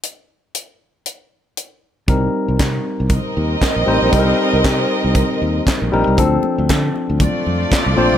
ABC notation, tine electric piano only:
X:1
M:4/4
L:1/8
Q:"Swing 16ths" 1/4=117
K:Cdor
V:1 name="Tine electric piano"
z8 | [G,CEB]3 z4 [G,CEc] | [G,CEAB]3 z4 [G,CEB] | [F,CDA]3 z4 [F,CDc] |]